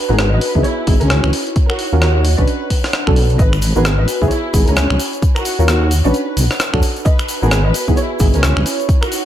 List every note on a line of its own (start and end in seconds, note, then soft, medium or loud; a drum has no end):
0.00 0.80 F#4 medium
0.00 0.80 B4 medium
0.05 0.80 G#5 medium
0.09 0.40 G#1 loud
0.09 0.18 B3 medium
0.09 0.18 D#4 medium
0.09 0.18 F#4 medium
0.09 0.24 G#4 medium
0.09 0.18 A#4 loud
0.09 0.24 B4 loud
0.19 cross-stick loud
0.19 closed hi-hat medium
0.32 0.56 B4 medium
0.32 0.56 D#5 medium
0.41 1.33 E4 medium
0.41 open hi-hat loud
0.55 0.63 C#2 medium
0.55 0.70 B3 medium
0.55 0.70 D#4 medium
0.55 0.70 E4 medium
0.55 0.70 G#4 loud
0.55 kick medium
0.64 0.89 E4 medium
0.64 2.86 C#5 medium
0.64 0.89 C#5 loud
0.64 closed hi-hat medium
0.87 0.99 G#1 medium
0.87 1.05 B3 medium
0.87 1.05 D#4 medium
0.87 1.05 E4 medium
0.87 1.05 G#4 medium
0.87 kick loud
0.87 open hi-hat loud
1.01 1.20 C#2 medium
1.01 1.25 C#4 medium
1.01 1.25 A#4 loud
1.01 closed hi-hat medium
1.10 cross-stick loud
1.10 closed hi-hat medium
1.24 1.32 C#2 medium
1.24 finger snap medium
1.33 2.48 D#4 medium
1.33 open hi-hat loud
1.47 closed hi-hat soft
1.56 kick loud
1.56 closed hi-hat medium
1.70 1.94 F#4 medium
1.70 1.94 A#4 loud
1.70 finger snap medium
1.79 open hi-hat loud
1.86 2.86 F#5 medium
1.93 2.36 D#2 loud
1.93 2.01 C#4 medium
1.93 2.01 F4 medium
1.93 2.01 F#4 medium
1.93 2.01 A#4 medium
2.02 2.26 F#4 medium
2.02 2.26 A#4 medium
2.02 cross-stick loud
2.02 closed hi-hat medium
2.25 open hi-hat loud
2.38 2.46 A#1 medium
2.38 2.53 C#4 medium
2.38 2.53 D4 medium
2.38 2.53 F#4 medium
2.38 2.62 B4 medium
2.38 2.53 C#5 medium
2.38 2.62 D5 medium
2.38 kick medium
2.38 closed hi-hat soft
2.48 3.39 D4 medium
2.48 closed hi-hat medium
2.57 4.47 B4 medium
2.70 kick medium
2.70 open hi-hat loud
2.84 cross-stick medium
2.84 open hi-hat medium
2.93 cross-stick loud
2.93 closed hi-hat medium
3.07 3.41 B1 loud
3.07 3.15 C#4 loud
3.07 3.15 D4 medium
3.07 3.15 F#4 medium
3.07 3.15 A4 loud
3.07 finger snap medium
3.07 kick loud
3.16 open hi-hat loud
3.30 closed hi-hat soft
3.39 3.73 G#1 loud
3.39 4.47 F#4 medium
3.39 3.63 B4 medium
3.39 3.63 D#5 loud
3.39 kick loud
3.39 closed hi-hat medium
3.39 shaker medium
3.53 finger snap medium
3.53 shaker soft
3.62 open hi-hat loud
3.62 shaker medium
3.72 4.06 G#1 loud
3.72 3.84 B3 medium
3.72 3.84 F#4 medium
3.72 3.90 G#4 medium
3.72 3.90 B4 medium
3.72 4.46 G#5 medium
3.72 shaker soft
3.76 3.84 D#4 medium
3.76 3.84 A#4 medium
3.85 cross-stick loud
3.85 closed hi-hat medium
3.85 shaker medium
3.99 4.22 B4 medium
3.99 4.22 D#5 medium
4.08 5.00 E4 medium
4.08 open hi-hat loud
4.08 shaker medium
4.15 6.53 C#5 medium
4.22 4.30 C#2 medium
4.22 4.37 B3 medium
4.22 4.37 D#4 medium
4.22 4.37 E4 medium
4.22 4.37 G#4 loud
4.22 kick medium
4.22 shaker soft
4.31 4.55 E4 medium
4.31 4.55 C#5 loud
4.31 closed hi-hat medium
4.31 shaker medium
4.38 5.00 B5 medium
4.54 4.66 G#1 medium
4.54 4.71 B3 medium
4.54 4.71 D#4 medium
4.54 4.71 E4 medium
4.54 4.71 G#4 medium
4.54 kick loud
4.54 open hi-hat loud
4.54 shaker loud
4.67 4.87 C#2 medium
4.67 4.91 C#4 medium
4.67 4.91 A#4 loud
4.67 closed hi-hat medium
4.67 shaker soft
4.76 cross-stick loud
4.76 closed hi-hat medium
4.76 shaker soft
4.90 4.98 C#2 medium
4.90 finger snap medium
5.00 6.14 D#4 medium
5.00 open hi-hat loud
5.00 shaker loud
5.13 closed hi-hat soft
5.13 shaker soft
5.22 kick loud
5.22 closed hi-hat medium
5.22 shaker medium
5.36 5.60 F#4 medium
5.36 5.60 A#4 medium
5.36 finger snap medium
5.36 shaker soft
5.45 open hi-hat loud
5.45 shaker medium
5.52 6.53 F#5 medium
5.59 6.02 D#2 loud
5.59 5.67 C#4 medium
5.59 5.67 F4 medium
5.59 5.67 F#4 medium
5.59 5.67 A#4 loud
5.59 shaker soft
5.68 5.92 F#4 medium
5.68 5.92 A#4 medium
5.68 cross-stick loud
5.68 closed hi-hat medium
5.68 shaker medium
5.91 open hi-hat loud
5.91 shaker loud
6.05 6.13 A#1 medium
6.05 6.20 C#4 medium
6.05 6.20 D4 medium
6.05 6.20 F#4 medium
6.05 6.29 B4 medium
6.05 6.20 C#5 medium
6.05 6.29 D5 medium
6.05 shaker soft
6.14 7.06 D4 medium
6.14 closed hi-hat medium
6.14 shaker medium
6.37 6.49 B1 medium
6.37 7.06 A5 medium
6.37 open hi-hat loud
6.37 shaker loud
6.42 8.13 B4 medium
6.51 cross-stick medium
6.51 open hi-hat medium
6.51 shaker soft
6.60 cross-stick loud
6.60 closed hi-hat medium
6.60 shaker medium
6.74 6.82 E2 medium
6.74 6.82 C#4 medium
6.74 6.82 D4 medium
6.74 6.82 F#4 medium
6.74 6.82 A4 medium
6.74 finger snap medium
6.74 kick loud
6.82 open hi-hat loud
6.82 shaker loud
6.96 closed hi-hat soft
6.96 shaker soft
7.05 8.13 F#4 medium
7.05 7.30 B4 medium
7.05 7.30 D#5 loud
7.05 kick loud
7.05 closed hi-hat medium
7.05 shaker medium
7.19 finger snap medium
7.19 shaker soft
7.28 open hi-hat loud
7.28 shaker medium
7.38 8.13 G#5 medium
7.42 7.72 G#1 loud
7.42 7.50 B3 medium
7.42 7.50 D#4 medium
7.42 7.50 F#4 medium
7.42 7.57 G#4 medium
7.42 7.50 A#4 loud
7.42 7.57 B4 loud
7.42 shaker soft
7.51 cross-stick loud
7.51 closed hi-hat medium
7.51 shaker medium
7.65 7.89 B4 medium
7.65 7.89 D#5 loud
7.74 8.66 E4 medium
7.74 open hi-hat loud
7.74 shaker medium
7.88 7.96 C#2 medium
7.88 8.03 B3 medium
7.88 8.03 D#4 medium
7.88 8.03 E4 medium
7.88 8.03 G#4 loud
7.88 kick medium
7.88 shaker soft
7.97 8.21 E4 medium
7.97 8.21 C#5 loud
7.97 9.25 C#5 medium
7.97 closed hi-hat medium
7.97 shaker medium
8.19 8.32 G#1 medium
8.19 8.38 B3 medium
8.19 8.38 D#4 medium
8.19 8.38 E4 medium
8.19 8.38 G#4 medium
8.19 kick loud
8.19 open hi-hat loud
8.19 shaker medium
8.34 8.53 C#2 medium
8.34 8.58 C#4 medium
8.34 8.58 A#4 loud
8.34 closed hi-hat medium
8.34 shaker soft
8.43 cross-stick loud
8.43 closed hi-hat medium
8.43 shaker medium
8.57 8.65 C#2 medium
8.57 finger snap medium
8.66 9.25 D#4 medium
8.66 open hi-hat loud
8.66 shaker loud
8.80 closed hi-hat soft
8.80 shaker soft
8.89 kick loud
8.89 closed hi-hat medium
8.89 shaker medium
8.96 9.25 F#5 medium
9.02 9.25 F#4 medium
9.02 9.25 A#4 loud
9.02 finger snap medium
9.02 shaker soft
9.12 open hi-hat loud
9.12 shaker medium